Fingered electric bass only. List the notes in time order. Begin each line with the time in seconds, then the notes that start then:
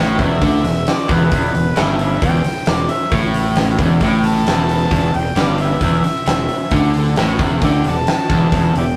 Already playing: A1
0.19 E1
0.42 D2
0.64 E1
1.09 E1
1.32 E1
1.55 E1
1.77 G1
2.22 E1
2.46 muted fingered electric bass stroke
2.68 E1
3.12 A1
3.79 E1
4.00 A1
4.47 E1
4.91 E1
5.15 E1
5.36 G1
5.81 E1
6.04 muted fingered electric bass stroke
6.27 E1
6.72 D2
7.17 A1
7.39 E1
7.62 D2
7.85 E1
8.30 E1
8.52 E1
8.76 E1